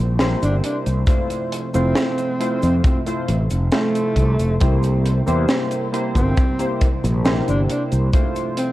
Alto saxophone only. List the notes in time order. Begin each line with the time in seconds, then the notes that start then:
0.42 D4
0.63 D4
1.74 C4
2.63 C4
2.85 C4
3.72 A3
6.16 C4
7.48 D4
7.69 D4
8.57 C4